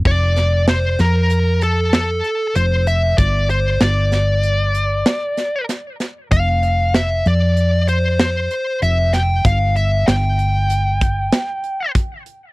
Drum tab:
CC |x---------|----------|----------|----------|
HH |-xxxxxxxxx|xxxxxxxxxx|xxxxxxxxxx|xxxxxxxxxx|
SD |-ooo--o---|--oo--oooo|--o---o--o|--o---o---|
BD |o---------|o---------|o---------|o----o--o-|